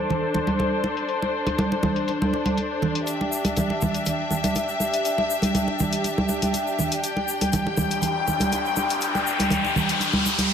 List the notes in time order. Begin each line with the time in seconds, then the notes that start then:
Already playing: D4 A4 C5
0.10 closed hi-hat, muted conga, low conga
0.34 muted conga, low conga
0.47 closed hi-hat, high conga
0.59 closed hi-hat, muted conga, high conga
0.84 muted conga
0.97 closed hi-hat
1.09 closed hi-hat
1.22 muted conga
1.47 closed hi-hat, muted conga, high conga
1.58 closed hi-hat, high conga
1.72 muted conga
1.83 high conga, low conga
1.96 closed hi-hat
2.08 closed hi-hat, muted conga
2.22 high conga
2.33 muted conga
2.46 closed hi-hat, high conga
2.57 closed hi-hat, muted conga
2.82 muted conga, low conga
2.95 closed hi-hat
3.07 G4 E5, closed hi-hat, shaker
3.21 muted conga
3.32 shaker
3.45 closed hi-hat, muted conga, high conga, shaker
3.57 closed hi-hat, high conga, low conga, shaker
3.70 muted conga
3.81 high conga, low conga, shaker
3.94 closed hi-hat, shaker
4.06 closed hi-hat, muted conga, low conga, shaker
4.31 muted conga, low conga, shaker
4.44 closed hi-hat, high conga, shaker
4.55 closed hi-hat, muted conga, high conga, shaker
4.69 shaker
4.80 muted conga, shaker
4.94 closed hi-hat, shaker
5.05 closed hi-hat, shaker
5.18 muted conga
5.30 shaker
5.42 closed hi-hat, muted conga, high conga, shaker
5.55 closed hi-hat, high conga, shaker
5.68 muted conga
5.79 high conga, low conga, shaker
5.92 closed hi-hat, shaker
6.04 closed hi-hat, muted conga, shaker
6.18 high conga
6.29 muted conga, shaker
6.42 closed hi-hat, high conga, shaker
6.54 closed hi-hat, muted conga, shaker
6.67 shaker
6.79 muted conga, low conga, shaker
6.92 closed hi-hat, shaker
7.04 G5, closed hi-hat, riser, shaker
7.17 muted conga
7.28 shaker
7.41 closed hi-hat, muted conga, high conga, shaker
7.53 closed hi-hat, high conga, low conga, shaker
7.67 muted conga
7.77 high conga, low conga, shaker
7.91 closed hi-hat, shaker
8.02 closed hi-hat, muted conga, low conga, shaker
8.28 muted conga, low conga, shaker
8.40 closed hi-hat, high conga, shaker
8.52 closed hi-hat, muted conga, high conga, shaker
8.66 shaker
8.76 muted conga, shaker
8.89 closed hi-hat, shaker
9.01 closed hi-hat, shaker
9.15 muted conga, shaker
9.27 shaker
9.39 closed hi-hat, muted conga, high conga, shaker
9.50 closed hi-hat, high conga, low conga, shaker
9.65 muted conga, shaker
9.76 high conga, low conga, shaker
9.89 closed hi-hat, shaker
10.00 closed hi-hat, muted conga, shaker
10.13 high conga
10.26 muted conga, shaker
10.38 closed hi-hat, high conga, shaker